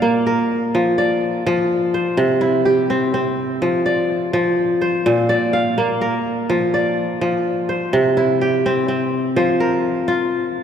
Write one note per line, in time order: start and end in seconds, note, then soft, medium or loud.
0.00 0.79 A#2 medium
0.00 1.95 A#3 medium
0.00 0.25 C5 medium
0.00 0.65 D5 medium
0.00 0.78 F5 medium
0.27 1.54 A#4 medium
0.75 1.45 F3 medium
0.98 2.09 D5 medium
1.47 2.23 F3 medium
1.94 3.13 C5 medium
2.17 3.67 C3 medium
2.41 3.68 E4 medium
2.65 4.07 G4 medium
2.90 3.13 C4 medium
3.14 4.94 C4 medium
3.62 4.32 F3 medium
3.86 4.96 D5 medium
4.33 5.11 F3 medium
4.81 6.00 C5 medium
5.06 6.55 A#2 medium
5.29 6.40 D5 medium
5.53 6.53 F5 medium
5.78 7.71 A#3 medium
6.01 7.29 A#4 medium
6.50 7.20 F3 medium
6.74 7.85 D5 medium
7.21 7.99 F3 medium
7.69 8.88 C5 medium
7.93 9.42 C3 medium
8.17 9.42 E4 medium
8.41 9.83 G4 medium
8.66 8.88 C4 medium
8.88 10.63 C4 medium
9.36 10.63 F3 medium
9.36 10.55 C5 medium
9.60 10.63 A#4 medium
10.08 10.63 F4 medium